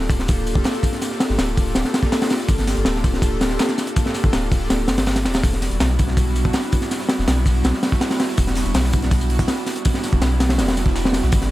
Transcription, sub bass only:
0.00 0.64 D1 loud
1.30 1.38 G1 loud
1.39 1.74 D1 loud
1.76 1.84 D1 loud
2.49 2.75 G1 loud
2.77 2.85 G1 loud
2.86 3.58 D1 loud
4.24 4.32 G1 loud
4.33 4.69 D1 loud
4.70 4.90 D1 medium
4.88 5.27 G1 medium
5.25 5.42 D1 medium
5.43 5.70 E1 medium
5.72 5.80 E1 loud
5.81 6.53 B1 loud
7.19 7.27 E1 loud
7.28 7.63 B1 loud
7.64 7.73 B1 loud
8.38 8.64 E1 loud
8.66 8.74 E1 loud
8.75 9.47 B1 loud
10.13 10.21 E1 loud
10.22 10.60 B1 loud
10.58 11.22 E1 loud
11.23 11.32 B1 loud
11.33 11.51 G1 medium

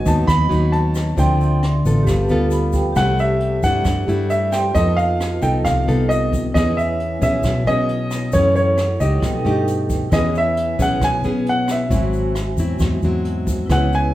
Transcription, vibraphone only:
0.00 1.12 F#4 soft
0.00 1.14 B4 soft
0.00 1.14 D#5 soft
0.00 1.15 F#5 medium
1.16 2.04 D5 soft
1.16 2.05 E5 soft
1.16 2.06 C6 medium
2.03 2.91 G4 medium
2.03 2.94 B4 medium
2.07 2.95 F5 medium
2.07 2.96 A5 medium
2.52 2.72 B5 medium
2.74 2.95 G5 medium
2.93 4.48 G4 soft
2.93 4.49 C5 soft
2.93 4.50 E5 soft
2.98 4.51 A5 medium
4.51 4.74 G4 soft
4.51 4.75 C5 soft
4.51 4.75 E5 soft
4.51 4.76 C6 soft
4.71 6.49 F4 soft
4.71 6.50 B4 soft
4.71 6.51 D#5 soft
4.77 6.51 A5 medium
6.52 8.28 E4 soft
6.52 8.29 B4 soft
6.52 8.30 C#5 soft
6.58 8.31 G#5 medium
8.30 9.19 E4 soft
8.30 9.20 A4 soft
8.37 9.23 F#5 medium
9.20 10.09 D#4 soft
9.20 10.10 A4 soft
9.20 10.11 B4 soft
9.26 10.12 G5 medium
10.10 11.86 E4 soft
10.10 11.87 B4 soft
10.14 11.88 C#5 soft
10.14 11.89 G#5 soft
11.87 13.64 F#4 medium
11.87 13.65 C5 soft
11.91 13.66 E5 soft
11.91 13.67 G#5 medium
13.66 14.14 E4 soft
13.66 14.14 B4 soft
13.70 14.14 C#5 soft
13.70 14.14 G#5 medium

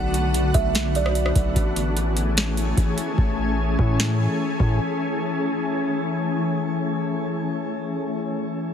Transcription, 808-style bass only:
0.00 0.52 B1 loud
0.54 1.32 B1 loud
1.36 1.55 B1 loud
1.56 2.74 A1 loud
2.77 2.97 A1 loud
3.18 3.76 A1 loud
3.79 4.28 A2 loud
4.60 4.79 A2 loud

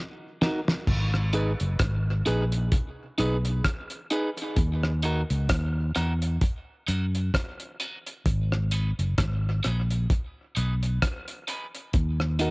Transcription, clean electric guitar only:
0.42 0.59 D#4 medium
0.42 0.60 F#4 medium
0.42 0.60 A#4 medium
1.33 1.51 D#4 medium
1.33 1.51 G#4 medium
1.33 1.52 B4 medium
2.26 2.44 D#4 medium
2.26 2.44 G#4 medium
2.26 2.44 B4 medium
3.18 3.36 D#4 medium
3.18 3.36 G#4 loud
3.18 3.37 B4 loud
4.11 4.28 D#4 medium
4.11 4.29 G#4 medium
4.11 4.29 B4 medium
5.03 5.21 D#4 medium
5.03 5.21 F#4 loud
5.03 5.21 A#4 loud
5.95 6.12 D#4 medium
5.95 6.13 F#4 medium
5.95 6.13 A#4 medium
6.87 7.05 D#4 medium
6.87 7.05 F#4 loud
6.87 7.06 A#4 loud
7.80 7.97 D#4 medium
7.80 7.98 F#4 medium
7.80 7.98 A#4 medium
8.72 8.89 D#4 medium
8.72 8.90 G#4 medium
8.72 8.90 B4 medium
9.63 9.81 D#4 medium
9.63 9.82 G#4 medium
9.63 9.82 B4 medium
10.55 10.73 D#4 medium
10.55 10.74 G#4 medium
10.55 10.74 B4 medium
11.48 11.65 D#4 medium
11.48 11.66 G#4 medium
11.48 11.66 B4 medium
12.39 12.51 D#4 medium
12.39 12.51 F#4 medium
12.39 12.51 A#4 medium

